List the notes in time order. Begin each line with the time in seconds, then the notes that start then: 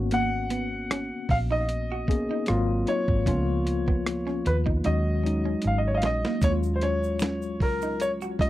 Already playing: G#1 A#3 B3 C#4 F#4
0.11 A#3 F#5, closed hi-hat
0.50 B3, closed hi-hat
0.91 C#4, cross-stick, closed hi-hat
1.29 A#1 F5, muted clean electric guitar stroke, kick, open hi-hat
1.51 D#4 D#5
1.69 closed hi-hat
1.92 F#4
2.08 A#3 B3 C#4 G#4, muted clean electric guitar stroke, kick, closed hi-hat
2.31 D#4
2.46 G#1 F#3 A#3 C4 F4, cross-stick, closed hi-hat
2.87 D#4 C#5, closed hi-hat
3.08 G#1, kick
3.26 C#2 F3 A#3 B3 C#4 F4, kick, closed hi-hat
3.66 muted clean electric guitar stroke, closed hi-hat
3.88 B3, kick
4.06 cross-stick, closed hi-hat
4.27 C#4, cross-stick
4.46 D#2 B4, muted clean electric guitar stroke, closed hi-hat
4.66 D#4, kick
4.84 D#2 F#3 G#3 C#4 D#4 F#4 D#5, closed hi-hat
5.24 F#3 G#3 C#4 D#4, muted clean electric guitar stroke, closed hi-hat
5.45 C#4
5.62 G#1, muted clean electric guitar stroke, closed hi-hat
5.67 F5
5.78 D#5
5.87 C#5
5.95 D#5 F5
6.02 A#1 C#4 D#5, snare, closed hi-hat
6.25 A#3, snare
6.42 D#2 F#3 G#3 A#3 C#4 E4 C#5, kick, closed hi-hat, shaker
6.51 F4
6.63 shaker
6.76 C5
6.81 C#4 C#5, closed hi-hat
7.04 shaker
7.19 C#4, finger snap, snare, closed hi-hat, shaker
7.42 shaker
7.60 C#2 A#4, muted clean electric guitar stroke, kick, open hi-hat
7.82 D#4, shaker
8.00 C#5, closed hi-hat, shaker
8.21 F#4, shaker
8.39 F#3 G#3 C#4 F4 D#5, muted clean electric guitar stroke, kick, closed hi-hat